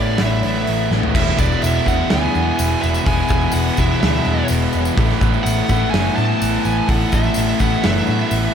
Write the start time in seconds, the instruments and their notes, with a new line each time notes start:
Already playing: overdriven electric guitar A2 E3 A3 B3 E4, picked electric bass A2, lead electric guitar D5
0.16 overdriven electric guitar A2 E3 A3 B3 E4, snare, open hi-hat
0.21 picked electric bass A1, lead electric guitar E5
0.43 picked electric bass A1, open hi-hat
0.55 snare
0.67 picked electric bass A1, open hi-hat
0.90 picked electric bass A1, distorted electric guitar A2 E3 A3, snare
1.03 floor tom
1.14 picked electric bass E1, overdriven electric guitar E2 B2 E3 G#3 B3 E4, lead electric guitar E5, kick, crash, tambourine
1.26 snare
1.38 picked electric bass E1, lead electric guitar D5, kick, tambourine
1.52 tambourine
1.62 picked electric bass E1, lead electric guitar E5, open hi-hat, tambourine
1.86 picked electric bass E1, overdriven electric guitar E3 G#3 B3 E4, lead electric guitar F#5, kick, tambourine
1.90 overdriven electric guitar E2 B2
2.10 picked electric bass D2, lead electric guitar G#5, snare, open hi-hat
2.35 picked electric bass E2, tambourine
2.59 picked electric bass E1, open hi-hat, tambourine
2.82 picked electric bass E1, lead electric guitar E5, tambourine
2.94 tambourine
3.05 picked electric bass E1, overdriven electric guitar E2 B2 E3 G#3 B3 E4, lead electric guitar G#5, kick, open hi-hat
3.29 picked electric bass E1, lead electric guitar G#5, kick, tambourine
3.41 tambourine
3.52 picked electric bass E1, lead electric guitar F#5, open hi-hat, tambourine
3.77 picked electric bass E1, overdriven electric guitar B2 E3 G#3 B3 E4, lead electric guitar E5, kick, tambourine
3.82 overdriven electric guitar E2
4.01 picked electric bass D2, lead electric guitar E5, snare, open hi-hat
4.25 picked electric bass E2, tambourine
4.48 picked electric bass E1, open hi-hat, tambourine
4.73 picked electric bass E1, tambourine
4.85 tambourine
4.97 picked electric bass A1, overdriven electric guitar A2 E3 A3 B3 E4, kick, open hi-hat, tambourine
5.10 snare
5.21 picked electric bass A1, kick, tambourine
5.34 tambourine
5.43 picked electric bass A1, lead electric guitar F#5, open hi-hat, tambourine
5.69 picked electric bass A1, overdriven electric guitar E3 A3 B3 E4, kick, tambourine
5.74 overdriven electric guitar A2
5.91 picked electric bass F#1, lead electric guitar G#5, snare, open hi-hat
6.16 picked electric bass A2, lead electric guitar A5, tambourine
6.42 picked electric bass A1, open hi-hat, tambourine
6.64 picked electric bass A1, lead electric guitar G#5, tambourine
6.88 picked electric bass A1, overdriven electric guitar A2 E3 A3 B3 E4, lead electric guitar F#5, kick, open hi-hat, tambourine
7.01 tambourine
7.12 picked electric bass A1, lead electric guitar E5, kick, tambourine
7.23 tambourine
7.34 picked electric bass A1, open hi-hat, tambourine
7.59 picked electric bass A1, overdriven electric guitar A2 E3 A3 B3 E4, lead electric guitar F#5, kick, tambourine
7.70 tambourine
7.83 picked electric bass F#1, lead electric guitar E5, snare, open hi-hat, tambourine
8.07 picked electric bass A2, tambourine
8.20 tambourine
8.31 picked electric bass A1, open hi-hat, tambourine